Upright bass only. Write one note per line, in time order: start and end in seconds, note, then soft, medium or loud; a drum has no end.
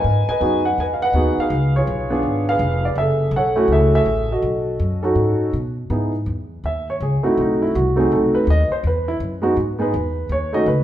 0.04 0.26 G#2 medium
0.29 muted upright bass stroke soft
0.41 0.77 F#2 medium
0.78 1.13 E2 medium
1.13 1.35 D#2 medium
1.38 muted upright bass stroke soft
1.50 1.86 C#2 medium
1.87 2.22 B1 medium
2.23 2.59 G#1 medium
2.59 2.95 F1 medium
2.95 3.31 F#1 medium
3.31 3.67 B1 medium
3.68 4.05 C#2 medium
4.06 4.42 A1 medium
4.42 4.79 B1 medium
4.80 5.15 F#2 medium
5.15 5.52 G#2 medium
5.53 5.89 B2 medium
5.90 6.26 G#2 medium
6.26 6.62 E2 medium
6.64 6.99 D#2 medium
7.00 7.22 C#2 medium
7.24 muted upright bass stroke soft
7.37 7.73 B1 medium
7.75 8.10 C2 medium
8.11 8.32 B1 medium
8.34 muted upright bass stroke soft
8.47 8.68 D#2 medium
8.70 muted upright bass stroke soft
8.84 9.19 E2 medium
9.20 9.55 F#2 medium
9.57 9.92 G#2 medium
9.94 10.29 E2 medium
10.29 10.65 D#2 medium
10.66 10.84 C#2 medium